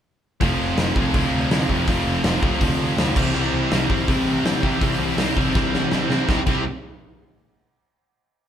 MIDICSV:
0, 0, Header, 1, 5, 480
1, 0, Start_track
1, 0, Key_signature, 0, "major"
1, 0, Tempo, 366748
1, 539, Time_signature, 4, 2, 24, 8
1, 11103, End_track
2, 0, Start_track
2, 0, Title_t, "Overdriven electric guitar"
2, 0, Program_c, 0, 29
2, 531, Note_on_c, 0, 53, 86
2, 539, Note_on_c, 0, 57, 103
2, 550, Note_on_c, 0, 60, 108
2, 554, Note_on_c, 0, 65, 113
2, 1014, Note_off_c, 0, 53, 0
2, 1019, Note_on_c, 0, 53, 81
2, 1022, Note_off_c, 0, 57, 0
2, 1027, Note_on_c, 0, 57, 93
2, 1032, Note_off_c, 0, 60, 0
2, 1037, Note_on_c, 0, 60, 79
2, 1041, Note_off_c, 0, 65, 0
2, 1046, Note_on_c, 0, 65, 86
2, 1253, Note_off_c, 0, 57, 0
2, 1254, Note_off_c, 0, 53, 0
2, 1268, Note_on_c, 0, 57, 101
2, 1270, Note_off_c, 0, 65, 0
2, 1270, Note_on_c, 0, 53, 87
2, 1273, Note_off_c, 0, 60, 0
2, 1278, Note_on_c, 0, 60, 83
2, 1285, Note_on_c, 0, 65, 94
2, 1491, Note_off_c, 0, 53, 0
2, 1499, Note_off_c, 0, 57, 0
2, 1506, Note_on_c, 0, 53, 100
2, 1512, Note_off_c, 0, 65, 0
2, 1515, Note_off_c, 0, 60, 0
2, 1515, Note_on_c, 0, 57, 103
2, 1520, Note_on_c, 0, 60, 97
2, 1527, Note_on_c, 0, 65, 102
2, 1961, Note_off_c, 0, 53, 0
2, 1969, Note_off_c, 0, 57, 0
2, 1977, Note_on_c, 0, 53, 84
2, 1984, Note_off_c, 0, 65, 0
2, 1985, Note_on_c, 0, 57, 90
2, 1994, Note_off_c, 0, 60, 0
2, 1999, Note_on_c, 0, 60, 94
2, 1999, Note_on_c, 0, 65, 91
2, 2192, Note_off_c, 0, 53, 0
2, 2205, Note_off_c, 0, 57, 0
2, 2207, Note_on_c, 0, 53, 80
2, 2217, Note_off_c, 0, 65, 0
2, 2221, Note_on_c, 0, 57, 93
2, 2223, Note_off_c, 0, 60, 0
2, 2228, Note_on_c, 0, 60, 87
2, 2233, Note_on_c, 0, 65, 101
2, 2437, Note_off_c, 0, 53, 0
2, 2453, Note_on_c, 0, 53, 91
2, 2454, Note_off_c, 0, 57, 0
2, 2462, Note_off_c, 0, 65, 0
2, 2470, Note_off_c, 0, 60, 0
2, 2470, Note_on_c, 0, 57, 107
2, 2475, Note_on_c, 0, 60, 103
2, 2478, Note_on_c, 0, 65, 106
2, 2916, Note_off_c, 0, 53, 0
2, 2924, Note_off_c, 0, 57, 0
2, 2932, Note_on_c, 0, 53, 81
2, 2937, Note_off_c, 0, 65, 0
2, 2940, Note_on_c, 0, 57, 92
2, 2943, Note_off_c, 0, 60, 0
2, 2948, Note_on_c, 0, 60, 89
2, 2952, Note_on_c, 0, 65, 108
2, 3155, Note_off_c, 0, 53, 0
2, 3166, Note_off_c, 0, 57, 0
2, 3171, Note_on_c, 0, 53, 80
2, 3178, Note_off_c, 0, 65, 0
2, 3181, Note_off_c, 0, 60, 0
2, 3182, Note_on_c, 0, 57, 94
2, 3186, Note_on_c, 0, 60, 88
2, 3194, Note_on_c, 0, 65, 83
2, 3400, Note_off_c, 0, 53, 0
2, 3412, Note_off_c, 0, 57, 0
2, 3416, Note_on_c, 0, 53, 84
2, 3426, Note_off_c, 0, 60, 0
2, 3427, Note_on_c, 0, 57, 105
2, 3430, Note_off_c, 0, 65, 0
2, 3431, Note_on_c, 0, 60, 104
2, 3446, Note_on_c, 0, 65, 106
2, 3876, Note_off_c, 0, 53, 0
2, 3883, Note_off_c, 0, 57, 0
2, 3892, Note_on_c, 0, 53, 85
2, 3899, Note_on_c, 0, 57, 96
2, 3900, Note_off_c, 0, 65, 0
2, 3907, Note_off_c, 0, 60, 0
2, 3912, Note_on_c, 0, 60, 84
2, 3915, Note_on_c, 0, 65, 99
2, 4120, Note_off_c, 0, 53, 0
2, 4123, Note_off_c, 0, 57, 0
2, 4129, Note_on_c, 0, 48, 99
2, 4132, Note_off_c, 0, 65, 0
2, 4138, Note_on_c, 0, 52, 108
2, 4144, Note_on_c, 0, 55, 101
2, 4150, Note_off_c, 0, 60, 0
2, 4155, Note_on_c, 0, 60, 118
2, 4155, Note_on_c, 0, 64, 111
2, 4367, Note_off_c, 0, 48, 0
2, 4372, Note_on_c, 0, 48, 93
2, 4375, Note_off_c, 0, 52, 0
2, 4380, Note_on_c, 0, 52, 98
2, 4388, Note_off_c, 0, 55, 0
2, 4392, Note_off_c, 0, 60, 0
2, 4393, Note_on_c, 0, 55, 94
2, 4394, Note_off_c, 0, 64, 0
2, 4397, Note_on_c, 0, 60, 109
2, 4400, Note_on_c, 0, 64, 98
2, 4845, Note_off_c, 0, 48, 0
2, 4850, Note_on_c, 0, 48, 87
2, 4851, Note_off_c, 0, 52, 0
2, 4856, Note_on_c, 0, 52, 86
2, 4858, Note_off_c, 0, 55, 0
2, 4863, Note_on_c, 0, 55, 94
2, 4866, Note_off_c, 0, 60, 0
2, 4871, Note_on_c, 0, 60, 89
2, 4876, Note_off_c, 0, 64, 0
2, 4881, Note_on_c, 0, 64, 94
2, 5080, Note_off_c, 0, 48, 0
2, 5086, Note_on_c, 0, 48, 88
2, 5097, Note_off_c, 0, 52, 0
2, 5099, Note_off_c, 0, 55, 0
2, 5102, Note_on_c, 0, 52, 95
2, 5104, Note_on_c, 0, 55, 100
2, 5105, Note_off_c, 0, 60, 0
2, 5110, Note_on_c, 0, 60, 87
2, 5112, Note_off_c, 0, 64, 0
2, 5118, Note_on_c, 0, 64, 103
2, 5330, Note_off_c, 0, 48, 0
2, 5335, Note_on_c, 0, 48, 99
2, 5341, Note_off_c, 0, 52, 0
2, 5345, Note_off_c, 0, 55, 0
2, 5347, Note_on_c, 0, 52, 107
2, 5351, Note_on_c, 0, 55, 101
2, 5355, Note_off_c, 0, 60, 0
2, 5355, Note_off_c, 0, 64, 0
2, 5360, Note_on_c, 0, 60, 111
2, 5360, Note_on_c, 0, 64, 110
2, 5815, Note_off_c, 0, 48, 0
2, 5820, Note_on_c, 0, 48, 86
2, 5828, Note_off_c, 0, 52, 0
2, 5829, Note_off_c, 0, 55, 0
2, 5834, Note_off_c, 0, 60, 0
2, 5834, Note_on_c, 0, 52, 101
2, 5835, Note_on_c, 0, 55, 99
2, 5840, Note_on_c, 0, 60, 101
2, 5845, Note_off_c, 0, 64, 0
2, 5850, Note_on_c, 0, 64, 109
2, 6045, Note_off_c, 0, 48, 0
2, 6050, Note_on_c, 0, 48, 89
2, 6052, Note_off_c, 0, 52, 0
2, 6057, Note_on_c, 0, 52, 100
2, 6058, Note_off_c, 0, 55, 0
2, 6063, Note_on_c, 0, 55, 93
2, 6067, Note_off_c, 0, 60, 0
2, 6069, Note_off_c, 0, 64, 0
2, 6072, Note_on_c, 0, 60, 102
2, 6075, Note_on_c, 0, 64, 93
2, 6283, Note_off_c, 0, 48, 0
2, 6293, Note_off_c, 0, 52, 0
2, 6298, Note_on_c, 0, 48, 97
2, 6303, Note_off_c, 0, 55, 0
2, 6304, Note_off_c, 0, 60, 0
2, 6309, Note_on_c, 0, 52, 96
2, 6312, Note_off_c, 0, 64, 0
2, 6318, Note_on_c, 0, 55, 96
2, 6320, Note_on_c, 0, 60, 104
2, 6328, Note_on_c, 0, 64, 112
2, 6775, Note_off_c, 0, 48, 0
2, 6781, Note_off_c, 0, 52, 0
2, 6791, Note_on_c, 0, 48, 92
2, 6792, Note_off_c, 0, 55, 0
2, 6796, Note_on_c, 0, 52, 81
2, 6797, Note_off_c, 0, 60, 0
2, 6802, Note_off_c, 0, 64, 0
2, 6807, Note_on_c, 0, 55, 80
2, 6812, Note_on_c, 0, 60, 93
2, 6818, Note_on_c, 0, 64, 107
2, 6999, Note_off_c, 0, 48, 0
2, 7007, Note_off_c, 0, 52, 0
2, 7015, Note_off_c, 0, 55, 0
2, 7015, Note_on_c, 0, 48, 81
2, 7021, Note_off_c, 0, 60, 0
2, 7023, Note_on_c, 0, 52, 94
2, 7029, Note_off_c, 0, 64, 0
2, 7031, Note_on_c, 0, 55, 92
2, 7037, Note_on_c, 0, 60, 101
2, 7044, Note_on_c, 0, 64, 100
2, 7254, Note_off_c, 0, 48, 0
2, 7261, Note_off_c, 0, 52, 0
2, 7263, Note_off_c, 0, 55, 0
2, 7269, Note_on_c, 0, 48, 95
2, 7270, Note_off_c, 0, 60, 0
2, 7277, Note_on_c, 0, 52, 101
2, 7279, Note_on_c, 0, 55, 109
2, 7280, Note_off_c, 0, 64, 0
2, 7286, Note_on_c, 0, 60, 108
2, 7296, Note_on_c, 0, 64, 112
2, 7736, Note_off_c, 0, 48, 0
2, 7742, Note_off_c, 0, 52, 0
2, 7749, Note_off_c, 0, 55, 0
2, 7751, Note_on_c, 0, 48, 94
2, 7758, Note_on_c, 0, 52, 82
2, 7759, Note_off_c, 0, 60, 0
2, 7764, Note_on_c, 0, 55, 101
2, 7768, Note_off_c, 0, 64, 0
2, 7775, Note_on_c, 0, 60, 101
2, 7783, Note_on_c, 0, 64, 100
2, 7980, Note_off_c, 0, 48, 0
2, 7989, Note_off_c, 0, 52, 0
2, 7992, Note_off_c, 0, 55, 0
2, 7996, Note_on_c, 0, 48, 76
2, 7998, Note_off_c, 0, 60, 0
2, 8005, Note_on_c, 0, 52, 85
2, 8008, Note_off_c, 0, 64, 0
2, 8008, Note_on_c, 0, 55, 87
2, 8014, Note_on_c, 0, 60, 90
2, 8023, Note_on_c, 0, 64, 100
2, 8202, Note_off_c, 0, 48, 0
2, 8206, Note_off_c, 0, 55, 0
2, 8211, Note_off_c, 0, 60, 0
2, 8213, Note_off_c, 0, 52, 0
2, 8218, Note_off_c, 0, 64, 0
2, 8218, Note_on_c, 0, 48, 95
2, 8221, Note_on_c, 0, 55, 91
2, 8226, Note_on_c, 0, 60, 98
2, 8234, Note_on_c, 0, 64, 101
2, 8240, Note_on_c, 0, 67, 99
2, 8366, Note_off_c, 0, 48, 0
2, 8368, Note_off_c, 0, 55, 0
2, 8371, Note_off_c, 0, 60, 0
2, 8374, Note_off_c, 0, 64, 0
2, 8378, Note_off_c, 0, 67, 0
2, 8462, Note_on_c, 0, 48, 91
2, 8477, Note_on_c, 0, 55, 86
2, 8478, Note_on_c, 0, 60, 86
2, 8482, Note_on_c, 0, 64, 100
2, 8482, Note_on_c, 0, 67, 98
2, 8656, Note_off_c, 0, 48, 0
2, 8664, Note_off_c, 0, 55, 0
2, 8665, Note_off_c, 0, 60, 0
2, 8667, Note_off_c, 0, 64, 0
2, 8667, Note_off_c, 0, 67, 0
2, 11103, End_track
3, 0, Start_track
3, 0, Title_t, "Distorted electric guitar"
3, 0, Program_c, 1, 30
3, 532, Note_on_c, 1, 41, 101
3, 535, Note_on_c, 1, 48, 104
3, 1003, Note_off_c, 1, 48, 0
3, 1009, Note_off_c, 1, 41, 0
3, 1014, Note_on_c, 1, 41, 94
3, 1019, Note_on_c, 1, 48, 96
3, 1242, Note_off_c, 1, 41, 0
3, 1245, Note_off_c, 1, 48, 0
3, 1258, Note_on_c, 1, 41, 84
3, 1261, Note_on_c, 1, 48, 90
3, 1481, Note_off_c, 1, 41, 0
3, 1483, Note_off_c, 1, 48, 0
3, 1497, Note_on_c, 1, 41, 93
3, 1498, Note_on_c, 1, 48, 90
3, 1953, Note_off_c, 1, 41, 0
3, 1964, Note_off_c, 1, 48, 0
3, 1969, Note_on_c, 1, 41, 95
3, 1980, Note_on_c, 1, 48, 91
3, 2206, Note_off_c, 1, 41, 0
3, 2213, Note_off_c, 1, 48, 0
3, 2221, Note_on_c, 1, 41, 83
3, 2228, Note_on_c, 1, 48, 90
3, 2444, Note_off_c, 1, 41, 0
3, 2452, Note_off_c, 1, 48, 0
3, 2459, Note_on_c, 1, 41, 95
3, 2468, Note_on_c, 1, 48, 114
3, 2923, Note_off_c, 1, 41, 0
3, 2926, Note_off_c, 1, 48, 0
3, 2939, Note_on_c, 1, 41, 98
3, 2941, Note_on_c, 1, 48, 89
3, 3167, Note_off_c, 1, 41, 0
3, 3169, Note_off_c, 1, 48, 0
3, 3183, Note_on_c, 1, 41, 91
3, 3184, Note_on_c, 1, 48, 94
3, 3389, Note_off_c, 1, 41, 0
3, 3400, Note_off_c, 1, 48, 0
3, 3405, Note_on_c, 1, 41, 91
3, 3416, Note_on_c, 1, 48, 101
3, 3881, Note_off_c, 1, 41, 0
3, 3883, Note_off_c, 1, 48, 0
3, 3897, Note_on_c, 1, 41, 84
3, 3899, Note_on_c, 1, 48, 90
3, 4123, Note_off_c, 1, 41, 0
3, 4123, Note_off_c, 1, 48, 0
3, 11103, End_track
4, 0, Start_track
4, 0, Title_t, "Picked electric bass"
4, 0, Program_c, 2, 34
4, 543, Note_on_c, 2, 29, 113
4, 712, Note_off_c, 2, 29, 0
4, 781, Note_on_c, 2, 29, 78
4, 950, Note_off_c, 2, 29, 0
4, 1007, Note_on_c, 2, 29, 93
4, 1182, Note_off_c, 2, 29, 0
4, 1255, Note_on_c, 2, 36, 83
4, 1427, Note_off_c, 2, 36, 0
4, 1503, Note_on_c, 2, 38, 85
4, 1671, Note_off_c, 2, 38, 0
4, 1753, Note_on_c, 2, 38, 101
4, 1918, Note_off_c, 2, 38, 0
4, 1978, Note_on_c, 2, 38, 93
4, 2148, Note_off_c, 2, 38, 0
4, 2222, Note_on_c, 2, 41, 89
4, 2390, Note_off_c, 2, 41, 0
4, 2458, Note_on_c, 2, 29, 115
4, 2628, Note_off_c, 2, 29, 0
4, 2690, Note_on_c, 2, 29, 82
4, 2863, Note_off_c, 2, 29, 0
4, 2926, Note_on_c, 2, 29, 103
4, 3101, Note_off_c, 2, 29, 0
4, 3175, Note_on_c, 2, 36, 86
4, 3346, Note_off_c, 2, 36, 0
4, 3424, Note_on_c, 2, 38, 84
4, 3593, Note_off_c, 2, 38, 0
4, 3647, Note_on_c, 2, 38, 86
4, 3822, Note_off_c, 2, 38, 0
4, 3889, Note_on_c, 2, 38, 86
4, 4063, Note_off_c, 2, 38, 0
4, 4137, Note_on_c, 2, 36, 97
4, 4309, Note_off_c, 2, 36, 0
4, 4384, Note_on_c, 2, 36, 111
4, 4553, Note_off_c, 2, 36, 0
4, 4619, Note_on_c, 2, 36, 89
4, 4790, Note_off_c, 2, 36, 0
4, 4868, Note_on_c, 2, 36, 93
4, 5037, Note_off_c, 2, 36, 0
4, 5099, Note_on_c, 2, 31, 89
4, 5271, Note_off_c, 2, 31, 0
4, 5346, Note_on_c, 2, 33, 90
4, 5515, Note_off_c, 2, 33, 0
4, 5588, Note_on_c, 2, 33, 99
4, 5757, Note_off_c, 2, 33, 0
4, 5808, Note_on_c, 2, 33, 91
4, 5985, Note_off_c, 2, 33, 0
4, 6061, Note_on_c, 2, 48, 98
4, 6233, Note_off_c, 2, 48, 0
4, 6308, Note_on_c, 2, 36, 100
4, 6478, Note_off_c, 2, 36, 0
4, 6522, Note_on_c, 2, 36, 77
4, 6701, Note_off_c, 2, 36, 0
4, 6764, Note_on_c, 2, 36, 88
4, 6943, Note_off_c, 2, 36, 0
4, 7027, Note_on_c, 2, 31, 86
4, 7198, Note_off_c, 2, 31, 0
4, 7266, Note_on_c, 2, 33, 81
4, 7438, Note_off_c, 2, 33, 0
4, 7502, Note_on_c, 2, 33, 89
4, 7675, Note_off_c, 2, 33, 0
4, 7746, Note_on_c, 2, 33, 88
4, 7918, Note_off_c, 2, 33, 0
4, 7970, Note_on_c, 2, 48, 82
4, 8147, Note_off_c, 2, 48, 0
4, 8228, Note_on_c, 2, 36, 104
4, 8361, Note_off_c, 2, 36, 0
4, 8470, Note_on_c, 2, 36, 81
4, 8692, Note_off_c, 2, 36, 0
4, 11103, End_track
5, 0, Start_track
5, 0, Title_t, "Drums"
5, 536, Note_on_c, 9, 36, 105
5, 536, Note_on_c, 9, 46, 59
5, 667, Note_off_c, 9, 36, 0
5, 667, Note_off_c, 9, 46, 0
5, 1013, Note_on_c, 9, 46, 72
5, 1018, Note_on_c, 9, 38, 109
5, 1143, Note_off_c, 9, 46, 0
5, 1149, Note_off_c, 9, 38, 0
5, 1254, Note_on_c, 9, 36, 94
5, 1385, Note_off_c, 9, 36, 0
5, 1491, Note_on_c, 9, 46, 59
5, 1495, Note_on_c, 9, 36, 114
5, 1622, Note_off_c, 9, 46, 0
5, 1626, Note_off_c, 9, 36, 0
5, 1976, Note_on_c, 9, 46, 74
5, 1982, Note_on_c, 9, 38, 111
5, 2107, Note_off_c, 9, 46, 0
5, 2112, Note_off_c, 9, 38, 0
5, 2217, Note_on_c, 9, 36, 75
5, 2347, Note_off_c, 9, 36, 0
5, 2457, Note_on_c, 9, 36, 105
5, 2458, Note_on_c, 9, 46, 63
5, 2588, Note_off_c, 9, 36, 0
5, 2588, Note_off_c, 9, 46, 0
5, 2931, Note_on_c, 9, 46, 69
5, 2936, Note_on_c, 9, 38, 116
5, 3062, Note_off_c, 9, 46, 0
5, 3067, Note_off_c, 9, 38, 0
5, 3176, Note_on_c, 9, 36, 104
5, 3307, Note_off_c, 9, 36, 0
5, 3413, Note_on_c, 9, 46, 64
5, 3417, Note_on_c, 9, 36, 103
5, 3544, Note_off_c, 9, 46, 0
5, 3548, Note_off_c, 9, 36, 0
5, 3902, Note_on_c, 9, 46, 65
5, 3907, Note_on_c, 9, 38, 125
5, 4033, Note_off_c, 9, 46, 0
5, 4038, Note_off_c, 9, 38, 0
5, 4138, Note_on_c, 9, 36, 116
5, 4144, Note_on_c, 9, 49, 102
5, 4269, Note_off_c, 9, 36, 0
5, 4275, Note_off_c, 9, 49, 0
5, 4860, Note_on_c, 9, 46, 71
5, 4865, Note_on_c, 9, 38, 123
5, 4991, Note_off_c, 9, 46, 0
5, 4996, Note_off_c, 9, 38, 0
5, 5102, Note_on_c, 9, 36, 100
5, 5233, Note_off_c, 9, 36, 0
5, 5343, Note_on_c, 9, 36, 108
5, 5347, Note_on_c, 9, 46, 67
5, 5474, Note_off_c, 9, 36, 0
5, 5478, Note_off_c, 9, 46, 0
5, 5829, Note_on_c, 9, 46, 70
5, 5834, Note_on_c, 9, 38, 105
5, 5960, Note_off_c, 9, 46, 0
5, 5965, Note_off_c, 9, 38, 0
5, 6062, Note_on_c, 9, 36, 87
5, 6193, Note_off_c, 9, 36, 0
5, 6301, Note_on_c, 9, 36, 113
5, 6307, Note_on_c, 9, 46, 65
5, 6432, Note_off_c, 9, 36, 0
5, 6438, Note_off_c, 9, 46, 0
5, 6778, Note_on_c, 9, 46, 66
5, 6783, Note_on_c, 9, 38, 127
5, 6909, Note_off_c, 9, 46, 0
5, 6914, Note_off_c, 9, 38, 0
5, 7024, Note_on_c, 9, 36, 100
5, 7155, Note_off_c, 9, 36, 0
5, 7268, Note_on_c, 9, 36, 122
5, 7274, Note_on_c, 9, 38, 59
5, 7398, Note_off_c, 9, 36, 0
5, 7405, Note_off_c, 9, 38, 0
5, 7515, Note_on_c, 9, 38, 68
5, 7646, Note_off_c, 9, 38, 0
5, 7743, Note_on_c, 9, 38, 101
5, 7874, Note_off_c, 9, 38, 0
5, 7985, Note_on_c, 9, 38, 82
5, 8115, Note_off_c, 9, 38, 0
5, 8227, Note_on_c, 9, 36, 101
5, 8228, Note_on_c, 9, 38, 88
5, 8358, Note_off_c, 9, 36, 0
5, 8359, Note_off_c, 9, 38, 0
5, 8462, Note_on_c, 9, 57, 79
5, 8466, Note_on_c, 9, 36, 106
5, 8593, Note_off_c, 9, 57, 0
5, 8597, Note_off_c, 9, 36, 0
5, 11103, End_track
0, 0, End_of_file